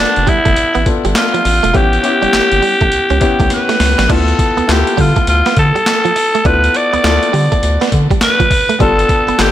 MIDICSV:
0, 0, Header, 1, 7, 480
1, 0, Start_track
1, 0, Tempo, 588235
1, 1421, Time_signature, 4, 2, 24, 8
1, 7765, End_track
2, 0, Start_track
2, 0, Title_t, "Alto saxophone"
2, 0, Program_c, 0, 65
2, 0, Note_on_c, 0, 62, 92
2, 238, Note_on_c, 0, 64, 110
2, 250, Note_off_c, 0, 62, 0
2, 710, Note_off_c, 0, 64, 0
2, 959, Note_on_c, 0, 65, 97
2, 1438, Note_on_c, 0, 67, 121
2, 1451, Note_off_c, 0, 65, 0
2, 2870, Note_off_c, 0, 67, 0
2, 2887, Note_on_c, 0, 71, 84
2, 3364, Note_on_c, 0, 69, 98
2, 3376, Note_off_c, 0, 71, 0
2, 3841, Note_on_c, 0, 67, 87
2, 3853, Note_off_c, 0, 69, 0
2, 4083, Note_on_c, 0, 65, 83
2, 4095, Note_off_c, 0, 67, 0
2, 4312, Note_off_c, 0, 65, 0
2, 4317, Note_on_c, 0, 65, 94
2, 4533, Note_off_c, 0, 65, 0
2, 4558, Note_on_c, 0, 69, 101
2, 5274, Note_on_c, 0, 71, 108
2, 5286, Note_off_c, 0, 69, 0
2, 5520, Note_on_c, 0, 74, 103
2, 5532, Note_off_c, 0, 71, 0
2, 6496, Note_off_c, 0, 74, 0
2, 6719, Note_on_c, 0, 71, 101
2, 7158, Note_off_c, 0, 71, 0
2, 7198, Note_on_c, 0, 69, 103
2, 7677, Note_on_c, 0, 67, 94
2, 7689, Note_off_c, 0, 69, 0
2, 7765, Note_off_c, 0, 67, 0
2, 7765, End_track
3, 0, Start_track
3, 0, Title_t, "Grand piano"
3, 0, Program_c, 1, 0
3, 0, Control_c, 1, 64, 127
3, 0, Note_on_c, 1, 59, 75
3, 0, Note_on_c, 1, 62, 71
3, 0, Note_on_c, 1, 65, 71
3, 0, Note_on_c, 1, 69, 92
3, 396, Note_off_c, 1, 59, 0
3, 397, Note_off_c, 1, 62, 0
3, 399, Note_off_c, 1, 65, 0
3, 401, Note_off_c, 1, 69, 0
3, 696, Note_on_c, 1, 59, 63
3, 698, Note_on_c, 1, 62, 60
3, 702, Note_on_c, 1, 65, 59
3, 705, Note_on_c, 1, 69, 70
3, 1177, Note_off_c, 1, 59, 0
3, 1178, Note_off_c, 1, 62, 0
3, 1180, Note_off_c, 1, 65, 0
3, 1181, Note_off_c, 1, 69, 0
3, 1415, Note_on_c, 1, 59, 78
3, 1419, Note_on_c, 1, 61, 69
3, 1422, Note_on_c, 1, 64, 73
3, 1424, Note_on_c, 1, 67, 88
3, 1434, Control_c, 1, 64, 0
3, 1589, Control_c, 1, 64, 127
3, 1599, Note_off_c, 1, 59, 0
3, 1601, Note_off_c, 1, 61, 0
3, 1602, Note_off_c, 1, 64, 0
3, 1603, Note_off_c, 1, 67, 0
3, 1660, Note_on_c, 1, 59, 79
3, 1663, Note_on_c, 1, 61, 71
3, 1667, Note_on_c, 1, 64, 74
3, 1670, Note_on_c, 1, 67, 88
3, 2319, Note_off_c, 1, 59, 0
3, 2321, Note_off_c, 1, 61, 0
3, 2323, Note_off_c, 1, 64, 0
3, 2324, Note_off_c, 1, 67, 0
3, 2615, Note_on_c, 1, 59, 77
3, 2616, Note_on_c, 1, 61, 71
3, 2623, Note_on_c, 1, 64, 69
3, 2623, Note_on_c, 1, 67, 85
3, 3096, Note_off_c, 1, 59, 0
3, 3097, Note_off_c, 1, 61, 0
3, 3100, Note_off_c, 1, 64, 0
3, 3100, Note_off_c, 1, 67, 0
3, 3333, Note_on_c, 1, 59, 76
3, 3336, Note_on_c, 1, 64, 69
3, 3339, Note_on_c, 1, 65, 76
3, 3343, Note_on_c, 1, 69, 82
3, 3351, Control_c, 1, 64, 0
3, 3514, Control_c, 1, 64, 127
3, 3676, Note_off_c, 1, 59, 0
3, 3678, Note_off_c, 1, 64, 0
3, 3679, Note_off_c, 1, 65, 0
3, 3681, Note_off_c, 1, 69, 0
3, 3811, Note_on_c, 1, 59, 73
3, 3815, Note_on_c, 1, 64, 68
3, 3818, Note_on_c, 1, 65, 66
3, 3822, Note_on_c, 1, 69, 78
3, 4475, Note_off_c, 1, 59, 0
3, 4477, Note_off_c, 1, 64, 0
3, 4478, Note_off_c, 1, 65, 0
3, 4480, Note_off_c, 1, 69, 0
3, 5260, Note_on_c, 1, 59, 80
3, 5262, Note_on_c, 1, 64, 69
3, 5266, Note_on_c, 1, 65, 69
3, 5270, Note_on_c, 1, 69, 82
3, 5599, Note_off_c, 1, 59, 0
3, 5601, Note_off_c, 1, 64, 0
3, 5603, Note_off_c, 1, 65, 0
3, 5605, Note_off_c, 1, 69, 0
3, 5738, Note_on_c, 1, 59, 70
3, 5741, Note_on_c, 1, 64, 63
3, 5746, Note_on_c, 1, 65, 71
3, 5748, Note_on_c, 1, 69, 84
3, 6398, Note_off_c, 1, 59, 0
3, 6399, Note_off_c, 1, 64, 0
3, 6402, Note_off_c, 1, 65, 0
3, 6403, Note_off_c, 1, 69, 0
3, 7172, Note_on_c, 1, 59, 81
3, 7177, Note_on_c, 1, 62, 75
3, 7179, Note_on_c, 1, 65, 74
3, 7183, Note_on_c, 1, 69, 87
3, 7193, Control_c, 1, 64, 0
3, 7346, Control_c, 1, 64, 127
3, 7515, Note_off_c, 1, 59, 0
3, 7518, Note_off_c, 1, 62, 0
3, 7519, Note_off_c, 1, 65, 0
3, 7521, Note_off_c, 1, 69, 0
3, 7653, Note_on_c, 1, 59, 75
3, 7655, Note_on_c, 1, 62, 67
3, 7658, Note_on_c, 1, 65, 68
3, 7661, Note_on_c, 1, 69, 82
3, 7765, Note_off_c, 1, 59, 0
3, 7765, Note_off_c, 1, 62, 0
3, 7765, Note_off_c, 1, 65, 0
3, 7765, Note_off_c, 1, 69, 0
3, 7765, End_track
4, 0, Start_track
4, 0, Title_t, "Clean electric guitar"
4, 0, Program_c, 2, 27
4, 219, Note_on_c, 2, 55, 70
4, 312, Note_off_c, 2, 55, 0
4, 370, Note_on_c, 2, 57, 70
4, 424, Note_off_c, 2, 57, 0
4, 611, Note_on_c, 2, 59, 74
4, 665, Note_off_c, 2, 59, 0
4, 856, Note_on_c, 2, 55, 72
4, 909, Note_off_c, 2, 55, 0
4, 1094, Note_on_c, 2, 53, 71
4, 1148, Note_off_c, 2, 53, 0
4, 1332, Note_on_c, 2, 57, 71
4, 1386, Note_off_c, 2, 57, 0
4, 1419, Note_on_c, 2, 57, 84
4, 1512, Note_off_c, 2, 57, 0
4, 1813, Note_on_c, 2, 55, 77
4, 1867, Note_off_c, 2, 55, 0
4, 2141, Note_on_c, 2, 55, 79
4, 2234, Note_off_c, 2, 55, 0
4, 2296, Note_on_c, 2, 57, 74
4, 2349, Note_off_c, 2, 57, 0
4, 2534, Note_on_c, 2, 61, 73
4, 2587, Note_off_c, 2, 61, 0
4, 2777, Note_on_c, 2, 57, 65
4, 2830, Note_off_c, 2, 57, 0
4, 3011, Note_on_c, 2, 57, 73
4, 3066, Note_off_c, 2, 57, 0
4, 3250, Note_on_c, 2, 55, 70
4, 3305, Note_off_c, 2, 55, 0
4, 3342, Note_on_c, 2, 62, 86
4, 3434, Note_off_c, 2, 62, 0
4, 3732, Note_on_c, 2, 59, 77
4, 3786, Note_off_c, 2, 59, 0
4, 4059, Note_on_c, 2, 55, 76
4, 4152, Note_off_c, 2, 55, 0
4, 4214, Note_on_c, 2, 57, 66
4, 4268, Note_off_c, 2, 57, 0
4, 4458, Note_on_c, 2, 59, 72
4, 4511, Note_off_c, 2, 59, 0
4, 4695, Note_on_c, 2, 55, 62
4, 4748, Note_off_c, 2, 55, 0
4, 4936, Note_on_c, 2, 53, 77
4, 4989, Note_off_c, 2, 53, 0
4, 5181, Note_on_c, 2, 57, 71
4, 5232, Note_off_c, 2, 57, 0
4, 5269, Note_on_c, 2, 62, 87
4, 5359, Note_off_c, 2, 62, 0
4, 5657, Note_on_c, 2, 59, 80
4, 5710, Note_off_c, 2, 59, 0
4, 5984, Note_on_c, 2, 55, 79
4, 6075, Note_off_c, 2, 55, 0
4, 6135, Note_on_c, 2, 57, 73
4, 6188, Note_off_c, 2, 57, 0
4, 6375, Note_on_c, 2, 59, 78
4, 6429, Note_off_c, 2, 59, 0
4, 6618, Note_on_c, 2, 55, 66
4, 6670, Note_off_c, 2, 55, 0
4, 6853, Note_on_c, 2, 53, 78
4, 6907, Note_off_c, 2, 53, 0
4, 7094, Note_on_c, 2, 57, 77
4, 7147, Note_off_c, 2, 57, 0
4, 7182, Note_on_c, 2, 55, 89
4, 7274, Note_off_c, 2, 55, 0
4, 7576, Note_on_c, 2, 59, 77
4, 7629, Note_off_c, 2, 59, 0
4, 7765, End_track
5, 0, Start_track
5, 0, Title_t, "Analog synth bass"
5, 0, Program_c, 3, 38
5, 141, Note_on_c, 3, 29, 96
5, 210, Note_off_c, 3, 29, 0
5, 377, Note_on_c, 3, 31, 96
5, 448, Note_off_c, 3, 31, 0
5, 469, Note_on_c, 3, 33, 49
5, 528, Note_off_c, 3, 33, 0
5, 620, Note_on_c, 3, 33, 96
5, 689, Note_off_c, 3, 33, 0
5, 859, Note_on_c, 3, 31, 95
5, 929, Note_off_c, 3, 31, 0
5, 1188, Note_on_c, 3, 33, 95
5, 1309, Note_off_c, 3, 33, 0
5, 1341, Note_on_c, 3, 28, 89
5, 1410, Note_off_c, 3, 28, 0
5, 1426, Note_on_c, 3, 33, 105
5, 1620, Note_off_c, 3, 33, 0
5, 1819, Note_on_c, 3, 31, 44
5, 1853, Note_off_c, 3, 31, 0
5, 1907, Note_on_c, 3, 31, 47
5, 1967, Note_off_c, 3, 31, 0
5, 2058, Note_on_c, 3, 31, 82
5, 2128, Note_off_c, 3, 31, 0
5, 2297, Note_on_c, 3, 33, 80
5, 2368, Note_off_c, 3, 33, 0
5, 2385, Note_on_c, 3, 37, 51
5, 2445, Note_off_c, 3, 37, 0
5, 2535, Note_on_c, 3, 37, 99
5, 2606, Note_off_c, 3, 37, 0
5, 2774, Note_on_c, 3, 36, 88
5, 2846, Note_off_c, 3, 36, 0
5, 3103, Note_on_c, 3, 37, 86
5, 3226, Note_off_c, 3, 37, 0
5, 3256, Note_on_c, 3, 33, 102
5, 3327, Note_off_c, 3, 33, 0
5, 3346, Note_on_c, 3, 38, 105
5, 3540, Note_off_c, 3, 38, 0
5, 3738, Note_on_c, 3, 38, 46
5, 3772, Note_off_c, 3, 38, 0
5, 3826, Note_on_c, 3, 38, 86
5, 3948, Note_off_c, 3, 38, 0
5, 4066, Note_on_c, 3, 50, 98
5, 4188, Note_off_c, 3, 50, 0
5, 4305, Note_on_c, 3, 38, 98
5, 4428, Note_off_c, 3, 38, 0
5, 4546, Note_on_c, 3, 50, 98
5, 4668, Note_off_c, 3, 50, 0
5, 5265, Note_on_c, 3, 38, 105
5, 5460, Note_off_c, 3, 38, 0
5, 5662, Note_on_c, 3, 38, 46
5, 5695, Note_off_c, 3, 38, 0
5, 5747, Note_on_c, 3, 38, 93
5, 5869, Note_off_c, 3, 38, 0
5, 5988, Note_on_c, 3, 50, 103
5, 6109, Note_off_c, 3, 50, 0
5, 6226, Note_on_c, 3, 38, 100
5, 6348, Note_off_c, 3, 38, 0
5, 6468, Note_on_c, 3, 50, 96
5, 6589, Note_off_c, 3, 50, 0
5, 7184, Note_on_c, 3, 31, 103
5, 7379, Note_off_c, 3, 31, 0
5, 7577, Note_on_c, 3, 31, 46
5, 7611, Note_off_c, 3, 31, 0
5, 7664, Note_on_c, 3, 31, 93
5, 7765, Note_off_c, 3, 31, 0
5, 7765, End_track
6, 0, Start_track
6, 0, Title_t, "Muted clean electric guitar strokes"
6, 704, Note_on_c, 9, 29, 42
6, 785, Note_off_c, 9, 29, 0
6, 1183, Note_on_c, 9, 29, 44
6, 1264, Note_off_c, 9, 29, 0
6, 1658, Note_on_c, 9, 29, 43
6, 1739, Note_off_c, 9, 29, 0
6, 1901, Note_on_c, 9, 29, 41
6, 1983, Note_off_c, 9, 29, 0
6, 2625, Note_on_c, 9, 29, 48
6, 2707, Note_off_c, 9, 29, 0
6, 3098, Note_on_c, 9, 29, 42
6, 3180, Note_off_c, 9, 29, 0
6, 3582, Note_on_c, 9, 29, 44
6, 3663, Note_off_c, 9, 29, 0
6, 3825, Note_on_c, 9, 29, 41
6, 3907, Note_off_c, 9, 29, 0
6, 4545, Note_on_c, 9, 29, 44
6, 4627, Note_off_c, 9, 29, 0
6, 5027, Note_on_c, 9, 29, 48
6, 5109, Note_off_c, 9, 29, 0
6, 5505, Note_on_c, 9, 29, 43
6, 5587, Note_off_c, 9, 29, 0
6, 5745, Note_on_c, 9, 29, 44
6, 5827, Note_off_c, 9, 29, 0
6, 6462, Note_on_c, 9, 29, 46
6, 6543, Note_off_c, 9, 29, 0
6, 6944, Note_on_c, 9, 29, 49
6, 7026, Note_off_c, 9, 29, 0
6, 7424, Note_on_c, 9, 29, 44
6, 7505, Note_off_c, 9, 29, 0
6, 7666, Note_on_c, 9, 29, 44
6, 7748, Note_off_c, 9, 29, 0
6, 7765, End_track
7, 0, Start_track
7, 0, Title_t, "Drums"
7, 133, Note_on_c, 9, 42, 54
7, 215, Note_off_c, 9, 42, 0
7, 222, Note_on_c, 9, 36, 93
7, 224, Note_on_c, 9, 42, 68
7, 303, Note_off_c, 9, 36, 0
7, 305, Note_off_c, 9, 42, 0
7, 371, Note_on_c, 9, 42, 47
7, 375, Note_on_c, 9, 36, 77
7, 453, Note_off_c, 9, 42, 0
7, 457, Note_off_c, 9, 36, 0
7, 460, Note_on_c, 9, 42, 83
7, 542, Note_off_c, 9, 42, 0
7, 613, Note_on_c, 9, 42, 52
7, 695, Note_off_c, 9, 42, 0
7, 702, Note_on_c, 9, 42, 66
7, 703, Note_on_c, 9, 36, 81
7, 784, Note_off_c, 9, 42, 0
7, 785, Note_off_c, 9, 36, 0
7, 855, Note_on_c, 9, 42, 49
7, 937, Note_off_c, 9, 42, 0
7, 939, Note_on_c, 9, 38, 110
7, 939, Note_on_c, 9, 42, 75
7, 948, Note_on_c, 9, 39, 93
7, 1021, Note_off_c, 9, 38, 0
7, 1021, Note_off_c, 9, 42, 0
7, 1029, Note_off_c, 9, 39, 0
7, 1097, Note_on_c, 9, 42, 54
7, 1179, Note_off_c, 9, 42, 0
7, 1185, Note_on_c, 9, 46, 78
7, 1267, Note_off_c, 9, 46, 0
7, 1338, Note_on_c, 9, 42, 57
7, 1419, Note_off_c, 9, 42, 0
7, 1423, Note_on_c, 9, 36, 113
7, 1425, Note_on_c, 9, 42, 73
7, 1505, Note_off_c, 9, 36, 0
7, 1506, Note_off_c, 9, 42, 0
7, 1575, Note_on_c, 9, 42, 48
7, 1657, Note_off_c, 9, 42, 0
7, 1662, Note_on_c, 9, 42, 68
7, 1744, Note_off_c, 9, 42, 0
7, 1817, Note_on_c, 9, 42, 48
7, 1898, Note_off_c, 9, 42, 0
7, 1902, Note_on_c, 9, 42, 76
7, 1903, Note_on_c, 9, 38, 116
7, 1911, Note_on_c, 9, 39, 91
7, 1983, Note_off_c, 9, 42, 0
7, 1984, Note_off_c, 9, 38, 0
7, 1993, Note_off_c, 9, 39, 0
7, 2053, Note_on_c, 9, 42, 54
7, 2135, Note_off_c, 9, 42, 0
7, 2142, Note_on_c, 9, 46, 76
7, 2223, Note_off_c, 9, 46, 0
7, 2290, Note_on_c, 9, 42, 47
7, 2295, Note_on_c, 9, 36, 82
7, 2372, Note_off_c, 9, 42, 0
7, 2377, Note_off_c, 9, 36, 0
7, 2380, Note_on_c, 9, 42, 85
7, 2462, Note_off_c, 9, 42, 0
7, 2531, Note_on_c, 9, 42, 47
7, 2613, Note_off_c, 9, 42, 0
7, 2618, Note_on_c, 9, 42, 67
7, 2622, Note_on_c, 9, 36, 88
7, 2700, Note_off_c, 9, 42, 0
7, 2704, Note_off_c, 9, 36, 0
7, 2771, Note_on_c, 9, 36, 94
7, 2774, Note_on_c, 9, 42, 56
7, 2853, Note_off_c, 9, 36, 0
7, 2855, Note_off_c, 9, 42, 0
7, 2858, Note_on_c, 9, 42, 77
7, 2859, Note_on_c, 9, 38, 48
7, 2939, Note_off_c, 9, 42, 0
7, 2940, Note_off_c, 9, 38, 0
7, 3012, Note_on_c, 9, 38, 55
7, 3014, Note_on_c, 9, 42, 56
7, 3094, Note_off_c, 9, 38, 0
7, 3095, Note_off_c, 9, 42, 0
7, 3100, Note_on_c, 9, 46, 75
7, 3101, Note_on_c, 9, 38, 83
7, 3182, Note_off_c, 9, 46, 0
7, 3183, Note_off_c, 9, 38, 0
7, 3255, Note_on_c, 9, 38, 86
7, 3256, Note_on_c, 9, 42, 57
7, 3336, Note_off_c, 9, 38, 0
7, 3338, Note_off_c, 9, 42, 0
7, 3342, Note_on_c, 9, 36, 124
7, 3342, Note_on_c, 9, 42, 70
7, 3343, Note_on_c, 9, 49, 97
7, 3423, Note_off_c, 9, 36, 0
7, 3424, Note_off_c, 9, 42, 0
7, 3424, Note_off_c, 9, 49, 0
7, 3494, Note_on_c, 9, 42, 48
7, 3576, Note_off_c, 9, 42, 0
7, 3582, Note_on_c, 9, 36, 95
7, 3584, Note_on_c, 9, 42, 72
7, 3663, Note_off_c, 9, 36, 0
7, 3665, Note_off_c, 9, 42, 0
7, 3737, Note_on_c, 9, 42, 43
7, 3818, Note_off_c, 9, 42, 0
7, 3825, Note_on_c, 9, 42, 81
7, 3826, Note_on_c, 9, 38, 105
7, 3835, Note_on_c, 9, 39, 87
7, 3907, Note_off_c, 9, 42, 0
7, 3908, Note_off_c, 9, 38, 0
7, 3917, Note_off_c, 9, 39, 0
7, 3976, Note_on_c, 9, 42, 54
7, 4058, Note_off_c, 9, 42, 0
7, 4062, Note_on_c, 9, 36, 91
7, 4065, Note_on_c, 9, 46, 75
7, 4144, Note_off_c, 9, 36, 0
7, 4146, Note_off_c, 9, 46, 0
7, 4212, Note_on_c, 9, 42, 48
7, 4216, Note_on_c, 9, 36, 81
7, 4294, Note_off_c, 9, 42, 0
7, 4297, Note_off_c, 9, 36, 0
7, 4303, Note_on_c, 9, 42, 83
7, 4384, Note_off_c, 9, 42, 0
7, 4453, Note_on_c, 9, 42, 53
7, 4456, Note_on_c, 9, 38, 65
7, 4534, Note_off_c, 9, 42, 0
7, 4538, Note_off_c, 9, 38, 0
7, 4542, Note_on_c, 9, 42, 67
7, 4544, Note_on_c, 9, 36, 82
7, 4623, Note_off_c, 9, 42, 0
7, 4626, Note_off_c, 9, 36, 0
7, 4699, Note_on_c, 9, 42, 50
7, 4781, Note_off_c, 9, 42, 0
7, 4784, Note_on_c, 9, 38, 107
7, 4784, Note_on_c, 9, 42, 80
7, 4793, Note_on_c, 9, 39, 95
7, 4866, Note_off_c, 9, 38, 0
7, 4866, Note_off_c, 9, 42, 0
7, 4875, Note_off_c, 9, 39, 0
7, 4940, Note_on_c, 9, 42, 55
7, 5022, Note_off_c, 9, 42, 0
7, 5026, Note_on_c, 9, 46, 77
7, 5108, Note_off_c, 9, 46, 0
7, 5180, Note_on_c, 9, 42, 55
7, 5262, Note_off_c, 9, 42, 0
7, 5264, Note_on_c, 9, 36, 115
7, 5264, Note_on_c, 9, 42, 73
7, 5345, Note_off_c, 9, 42, 0
7, 5346, Note_off_c, 9, 36, 0
7, 5417, Note_on_c, 9, 42, 51
7, 5498, Note_off_c, 9, 42, 0
7, 5504, Note_on_c, 9, 42, 71
7, 5586, Note_off_c, 9, 42, 0
7, 5660, Note_on_c, 9, 42, 44
7, 5741, Note_off_c, 9, 42, 0
7, 5745, Note_on_c, 9, 42, 71
7, 5746, Note_on_c, 9, 38, 110
7, 5755, Note_on_c, 9, 39, 92
7, 5827, Note_off_c, 9, 42, 0
7, 5828, Note_off_c, 9, 38, 0
7, 5837, Note_off_c, 9, 39, 0
7, 5897, Note_on_c, 9, 42, 50
7, 5979, Note_off_c, 9, 42, 0
7, 5988, Note_on_c, 9, 46, 74
7, 6070, Note_off_c, 9, 46, 0
7, 6136, Note_on_c, 9, 42, 51
7, 6138, Note_on_c, 9, 36, 86
7, 6217, Note_off_c, 9, 42, 0
7, 6220, Note_off_c, 9, 36, 0
7, 6225, Note_on_c, 9, 42, 79
7, 6307, Note_off_c, 9, 42, 0
7, 6377, Note_on_c, 9, 42, 52
7, 6380, Note_on_c, 9, 38, 68
7, 6458, Note_off_c, 9, 42, 0
7, 6462, Note_off_c, 9, 38, 0
7, 6464, Note_on_c, 9, 42, 69
7, 6465, Note_on_c, 9, 36, 86
7, 6546, Note_off_c, 9, 42, 0
7, 6547, Note_off_c, 9, 36, 0
7, 6614, Note_on_c, 9, 36, 103
7, 6617, Note_on_c, 9, 42, 55
7, 6696, Note_off_c, 9, 36, 0
7, 6699, Note_off_c, 9, 42, 0
7, 6700, Note_on_c, 9, 38, 120
7, 6700, Note_on_c, 9, 42, 78
7, 6709, Note_on_c, 9, 39, 89
7, 6781, Note_off_c, 9, 38, 0
7, 6782, Note_off_c, 9, 42, 0
7, 6790, Note_off_c, 9, 39, 0
7, 6853, Note_on_c, 9, 36, 89
7, 6855, Note_on_c, 9, 42, 58
7, 6935, Note_off_c, 9, 36, 0
7, 6937, Note_off_c, 9, 42, 0
7, 6941, Note_on_c, 9, 36, 93
7, 6942, Note_on_c, 9, 46, 75
7, 7022, Note_off_c, 9, 36, 0
7, 7023, Note_off_c, 9, 46, 0
7, 7095, Note_on_c, 9, 42, 58
7, 7177, Note_off_c, 9, 42, 0
7, 7182, Note_on_c, 9, 36, 124
7, 7183, Note_on_c, 9, 42, 78
7, 7264, Note_off_c, 9, 36, 0
7, 7264, Note_off_c, 9, 42, 0
7, 7336, Note_on_c, 9, 42, 50
7, 7418, Note_off_c, 9, 42, 0
7, 7419, Note_on_c, 9, 42, 73
7, 7420, Note_on_c, 9, 36, 93
7, 7501, Note_off_c, 9, 36, 0
7, 7501, Note_off_c, 9, 42, 0
7, 7576, Note_on_c, 9, 42, 45
7, 7658, Note_off_c, 9, 42, 0
7, 7660, Note_on_c, 9, 42, 79
7, 7661, Note_on_c, 9, 38, 117
7, 7670, Note_on_c, 9, 39, 94
7, 7741, Note_off_c, 9, 42, 0
7, 7742, Note_off_c, 9, 38, 0
7, 7751, Note_off_c, 9, 39, 0
7, 7765, End_track
0, 0, End_of_file